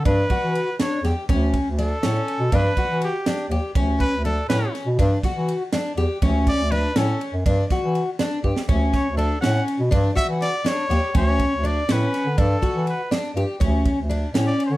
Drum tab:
RD |x-x-x-x-x-|x-x-x-x-x-|x-x-x-x-x-|x-x-x-x-x-|
SD |------o-o-|------o---|------o---|------o-o-|
BD |o-o-------|o-o-------|o-o-------|o-o-------|

RD |x-x-x-x-x-|x-x-x-x-x-|x-x-x-x---|x-x-x-x-x-|
SD |--o---o---|--o---o---|--o---o--o|--o---o---|
BD |o-o-------|o-o-------|o-o-----o-|o-o-------|

RD |x-x-x-x-x-|x-x-x-x-x-|x-x-x-x-x-|x-x-x-x-x-|
SD |----o-o-o-|------o-o-|------o---|------o---|
BD |o-o-------|o-o-------|o-o-------|o-o-------|